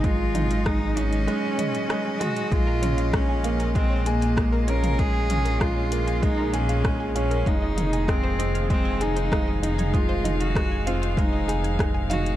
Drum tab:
HH |x-xxx-xxx-xxx-xx|x-xxx-xxx-xxx-xx|x-xxx-xxx-xxx-xx|x-xxx-xxx-xxx-xx|
SD |----r-------r---|----r-------r---|----r-------r---|----r-------r---|
T2 |--o-------o---o-|--o------------o|--o-------------|--o------------o|
BD |o---o-----------|o---o---o---o---|o---o---o---o---|o---o---o---o---|

HH |x-xxx-xxx-xxx-xx|
SD |----r-------r---|
T2 |--o-----------o-|
BD |o---o---o---o---|